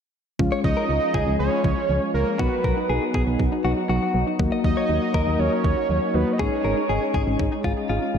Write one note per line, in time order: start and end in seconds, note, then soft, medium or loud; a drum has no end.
0.39 0.49 C#2 loud
0.39 2.37 F3 medium
0.39 0.51 F3 medium
0.39 2.37 G#3 medium
0.39 2.35 G#3 medium
0.39 2.37 C#4 medium
0.39 2.35 C#4 medium
0.39 2.35 F4 medium
0.39 kick loud
0.52 0.63 G#3 medium
0.52 0.59 C#5 medium
0.64 0.74 C#2 loud
0.64 0.76 F3 medium
0.64 1.35 D#5 loud
0.64 kick medium
0.77 0.88 C#4 medium
0.77 0.84 A#4 medium
0.89 0.99 C#2 loud
1.02 1.13 F4 medium
1.14 1.24 C#2 loud
1.14 1.26 F3 medium
1.14 1.61 G#4 medium
1.14 kick medium
1.27 1.37 C#2 medium
1.27 1.38 G#3 medium
1.39 1.49 C#2 loud
1.39 1.51 F3 medium
1.39 2.10 C#5 loud
1.52 1.63 C#4 medium
1.64 1.74 C#2 loud
1.64 1.76 F3 medium
1.64 kick medium
1.77 1.88 F4 medium
1.89 1.99 C#2 loud
1.89 2.01 F3 medium
2.02 2.13 G#3 medium
2.14 2.24 C#2 loud
2.14 2.26 F3 medium
2.14 2.41 A#4 medium
2.27 2.39 C#4 medium
2.39 2.49 B1 loud
2.39 4.37 F#3 medium
2.39 2.51 F#3 medium
2.39 4.35 B3 medium
2.39 4.37 B3 medium
2.39 4.35 D#4 medium
2.39 8.18 D#4 medium
2.39 2.54 F#4 medium
2.39 4.35 F#4 medium
2.39 3.14 B4 medium
2.39 kick loud
2.52 2.63 B3 medium
2.64 2.74 B1 medium
2.64 2.76 F#3 medium
2.64 2.79 A#4 medium
2.64 kick medium
2.77 2.88 D#4 medium
2.89 2.99 B1 medium
2.89 3.04 G#4 medium
3.02 3.13 F#4 medium
3.14 3.24 B1 medium
3.14 3.26 F#3 medium
3.14 3.22 G#4 medium
3.14 kick medium
3.27 3.37 B1 medium
3.27 3.38 B3 medium
3.40 3.50 B1 loud
3.40 3.51 F#3 medium
3.40 kick medium
3.52 3.63 D#4 medium
3.64 3.74 B1 loud
3.64 3.76 F#3 medium
3.64 3.72 F#4 medium
3.77 3.88 F#4 medium
3.89 3.99 B1 loud
3.89 4.01 F#3 medium
3.89 4.25 F#4 medium
4.02 4.13 B3 medium
4.14 4.24 B1 loud
4.14 4.26 F#3 medium
4.27 4.38 D#4 medium
4.39 4.49 D#2 loud
4.39 4.51 F#3 medium
4.39 6.38 F#3 medium
4.39 6.11 A#3 medium
4.39 6.38 A#3 medium
4.39 6.11 D#4 medium
4.39 6.11 F#4 medium
4.39 kick loud
4.52 4.63 A#3 medium
4.52 4.59 D#5 medium
4.64 4.74 D#2 loud
4.64 4.76 F#3 medium
4.64 5.41 D#5 loud
4.64 kick medium
4.77 4.88 D#4 medium
4.77 4.84 C#5 medium
4.89 4.99 D#2 loud
5.02 5.13 F#4 medium
5.14 5.24 D#2 loud
5.14 5.26 F#3 medium
5.14 5.61 A#4 medium
5.14 kick medium
5.27 5.37 D#2 loud
5.27 5.38 A#3 medium
5.39 5.49 D#2 loud
5.39 5.51 F#3 medium
5.39 6.16 C#5 loud
5.52 5.63 D#4 medium
5.64 5.74 D#2 loud
5.64 5.76 F#3 medium
5.64 kick medium
5.77 5.88 F#4 medium
5.89 5.99 D#2 medium
5.89 6.01 F#3 medium
6.02 6.13 A#3 medium
6.14 6.24 D#2 loud
6.14 6.26 F#3 medium
6.14 6.39 A#3 soft
6.14 6.38 D#4 soft
6.14 6.39 F#4 medium
6.14 6.34 B4 medium
6.27 6.38 D#4 medium
6.32 6.41 D#5 medium
6.39 6.49 G#1 loud
6.39 8.18 G#3 medium
6.39 6.51 G#3 medium
6.39 8.18 C#4 medium
6.39 8.18 D#4 medium
6.39 6.54 G#4 medium
6.39 8.18 G#4 medium
6.39 7.14 C#5 medium
6.39 kick loud
6.52 6.63 C#4 medium
6.64 6.74 G#1 loud
6.64 6.76 G#3 medium
6.64 6.79 A#4 medium
6.77 6.88 D#4 medium
6.89 6.99 G#1 loud
6.89 7.04 G#4 medium
7.02 7.13 G#4 medium
7.14 7.24 G#1 loud
7.14 7.26 G#3 medium
7.14 7.22 G#4 medium
7.14 kick medium
7.27 7.37 G#1 loud
7.27 7.38 C#4 medium
7.39 7.49 G#1 loud
7.39 7.51 G#3 medium
7.39 kick medium
7.52 7.63 D#4 medium
7.64 7.74 G#1 medium
7.64 7.76 G#3 medium
7.64 7.71 F4 medium
7.64 kick medium
7.77 7.88 G#4 medium
7.89 7.99 G#1 loud
7.89 8.01 G#3 medium
7.89 8.18 F4 medium
8.02 8.13 C#4 medium
8.14 8.18 G#1 loud
8.14 8.18 G#3 medium